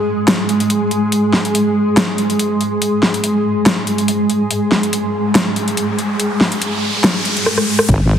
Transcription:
Already playing: G#3
0.28 snare, closed hi-hat
0.49 closed hi-hat
0.60 closed hi-hat
0.70 closed hi-hat
0.91 closed hi-hat
1.12 closed hi-hat
1.33 snare
1.45 closed hi-hat
1.55 closed hi-hat
1.97 snare, closed hi-hat
2.18 closed hi-hat
2.30 closed hi-hat
2.39 closed hi-hat
2.61 closed hi-hat
2.82 closed hi-hat
3.03 snare
3.14 closed hi-hat
3.24 closed hi-hat
3.66 snare, closed hi-hat
3.87 closed hi-hat
3.98 closed hi-hat
4.08 closed hi-hat
4.30 closed hi-hat
4.50 closed hi-hat, riser
4.72 snare
4.83 closed hi-hat
4.93 closed hi-hat
5.35 snare, closed hi-hat
5.56 closed hi-hat
5.68 closed hi-hat
5.77 closed hi-hat
5.99 closed hi-hat
6.20 closed hi-hat
6.41 snare
6.52 closed hi-hat
6.62 closed hi-hat
7.04 snare, closed hi-hat
7.25 closed hi-hat
7.37 closed hi-hat
7.46 cross-stick
7.58 cross-stick
7.79 cross-stick
7.89 G#1 G#3, kick, closed hi-hat

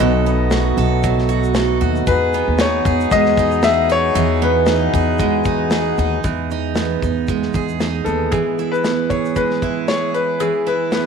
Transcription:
Already playing: F#3 A3 B3 D#4 F#4 D#5
0.00 B1 B2 A4, shaker
0.26 B3, shaker
0.51 F#4, snare, shaker
0.77 B1 A4, shaker
1.03 F#3, kick, shaker
1.18 snare
1.29 F#4, shaker
1.44 shaker
1.55 A4, snare, shaker
1.81 D#2 F#4, shaker
1.96 shaker
2.07 E2 G#3 B3 F#4 G#4 B4, kick, shaker
2.33 B3, shaker
2.48 D#2
2.58 D#4 C#5, snare, shaker
2.85 E2 G#4, kick, shaker
3.00 shaker
3.11 E2 G#3 D#5, kick, shaker
3.26 snare
3.37 D#4, kick, shaker
3.51 shaker
3.63 G#4 E5, snare, shaker
3.89 D#4 C#5, shaker
4.15 E2 E3 G#4, shaker
4.42 B3 B4, shaker
4.66 D#4, snare, shaker
4.94 E2 G#4, kick, shaker
5.19 G#3, kick, shaker
5.44 D#4, kick, shaker
5.71 G#4, snare, shaker
5.97 D#2 D#4, shaker
6.24 E2 E3, kick, shaker
6.50 D#4, shaker
6.75 B3, snare, shaker
7.02 E2 D#4, kick, shaker
7.28 G#3, kick, shaker
7.42 snare
7.53 E2 G#4, kick, shaker
7.69 shaker
7.80 D#4, snare, shaker
8.05 D#2 B3 A4, shaker
8.31 E3 G#4, kick, shaker
8.59 E4, shaker
8.72 B4, shaker
8.84 B3, snare, shaker
9.10 G#4 C#5, kick, shaker
9.25 shaker
9.36 G#3 B4, kick, shaker
9.50 snare
9.62 E4, kick, shaker
9.88 G#4 C#5, snare, shaker
10.14 E4 B4, shaker
10.40 E3 G#4, shaker
10.67 E4 B4, shaker
10.92 B3 B4, snare, shaker

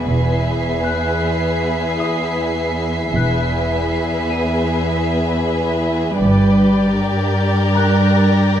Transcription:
0.05 E1 E2 G#4 B4 E5 B6 C7
0.83 F#6
2.00 D#6
3.13 E1 E2 G#4 B4 E5 F#6
4.30 D#7
6.21 G1 G2 G4 D5 G6 A6
6.98 A#4
7.75 A#5 F#6 A#6

